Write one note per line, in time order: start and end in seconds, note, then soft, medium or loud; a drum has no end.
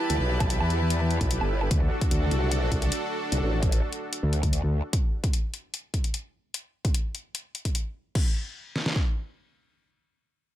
0.00 1.67 E4 medium
0.00 1.71 E4 medium
0.00 1.67 G4 medium
0.00 1.67 B4 medium
0.00 1.71 B4 medium
0.00 1.71 A5 medium
0.00 1.71 B5 medium
0.10 0.19 D2 medium
0.10 closed hi-hat medium
0.20 0.59 B1 medium
0.40 kick loud
0.40 closed hi-hat soft
0.40 low woodblock medium
0.50 closed hi-hat medium
0.61 1.19 E2 medium
0.61 low woodblock medium
0.70 closed hi-hat soft
0.90 closed hi-hat medium
1.11 closed hi-hat soft
1.21 1.39 B1 medium
1.21 kick medium
1.21 closed hi-hat soft
1.31 closed hi-hat medium
1.41 1.69 G1 medium
1.41 low woodblock medium
1.61 low woodblock medium
1.71 1.90 D2 medium
1.71 4.90 D4 medium
1.71 4.90 F#4 medium
1.71 4.90 A4 medium
1.71 kick loud
1.71 closed hi-hat medium
2.01 kick loud
2.01 closed hi-hat soft
2.11 2.30 D2 medium
2.11 closed hi-hat medium
2.31 2.70 C2 medium
2.31 closed hi-hat soft
2.52 closed hi-hat medium
2.72 2.90 C2 medium
2.72 kick medium
2.72 closed hi-hat soft
2.82 closed hi-hat soft
2.92 closed hi-hat medium
3.32 3.41 C2 medium
3.32 closed hi-hat medium
3.43 3.81 A1 medium
3.63 kick medium
3.63 closed hi-hat soft
3.72 closed hi-hat medium
3.93 closed hi-hat soft
4.13 closed hi-hat medium
4.23 4.62 D2 medium
4.33 closed hi-hat soft
4.43 kick medium
4.43 closed hi-hat soft
4.53 closed hi-hat medium
4.63 4.82 D2 medium
4.93 kick loud
4.93 closed hi-hat medium
5.24 kick medium
5.24 closed hi-hat soft
5.33 closed hi-hat medium
5.54 closed hi-hat soft
5.74 closed hi-hat medium
5.94 kick medium
5.94 closed hi-hat soft
6.04 closed hi-hat soft
6.14 closed hi-hat medium
6.54 closed hi-hat medium
6.85 kick loud
6.85 closed hi-hat soft
6.94 closed hi-hat medium
7.15 closed hi-hat soft
7.35 closed hi-hat medium
7.55 closed hi-hat medium
7.65 kick medium
7.65 closed hi-hat soft
7.75 closed hi-hat medium
8.15 kick loud
8.15 crash medium
8.76 snare medium
8.86 snare medium
8.96 kick medium